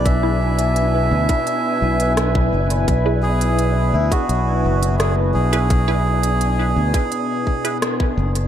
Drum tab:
HH |x--xx--xx--xx--x|x--xx--xx--xx--x|x--xx--xx--xx--x|
SD |------------r---|------------r---|------------r---|
BD |o------o-----o--|o------o--------|o------o--o--o--|